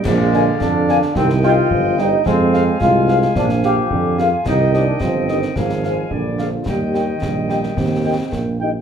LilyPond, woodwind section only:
\new Staff \with { instrumentName = "Woodwind section" } { \time 2/4 \key ees \major \tempo 4 = 109 << { f''2 | g''2 | aes''2~ | aes''2 |
g''2 | aes''2 | g''2~ | g''4. r8 | } \\ { d''2 | ees''2 | f''2~ | f''2 |
ees''2 | f''4 d''4 | ees''2~ | ees''4. r8 | } >> }